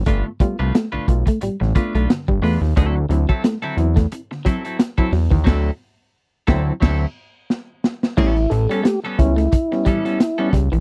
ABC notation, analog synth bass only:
X:1
M:4/4
L:1/16
Q:"Swing 16ths" 1/4=89
K:D
V:1 name="Analog synth bass" clef=bass
G,,, z2 =C,, z B,,, B,,, z A,,, A,,, z B,,, z G,,, E,, ^D,, | D,,2 D,, z3 E,,2 z6 E,, ^D,, | D,,2 z4 D,,2 D,,2 z6 | A,,,2 A,,, z3 C,,2 z6 C,, _B,,, |]